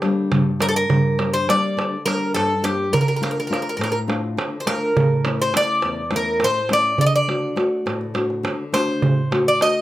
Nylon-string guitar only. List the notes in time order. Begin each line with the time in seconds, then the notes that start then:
Already playing: D3
0.02 G3 A#3 D4
0.31 G2
0.60 G3 A#3 D4
0.89 G2
1.18 G3 A#3 D4
1.48 G3 A#3 D4
1.77 D3
2.05 G3 A#3 D4
2.35 G2
2.62 G3 A#3 D4
2.93 D3
3.21 A3 D4 F4
3.50 A3 D4 F4
3.78 A2
4.07 A3 D4 F4
4.37 D3
4.66 A3 D4 F4
4.96 A2
5.25 A3 C#4 E4
5.55 C#3 A3 E4
5.83 E2
6.11 A3 C#4 E4
6.41 A2
6.70 A3 C#4 E4
6.99 D3
7.27 A3 D4 F#4
7.56 A3 D4 F#4
7.86 A2
8.14 A3 D4 F#4
8.43 D3
8.72 A3 D4 F#4
9.03 A2
9.31 A3 D4 F#4
9.61 A3 D4 F#4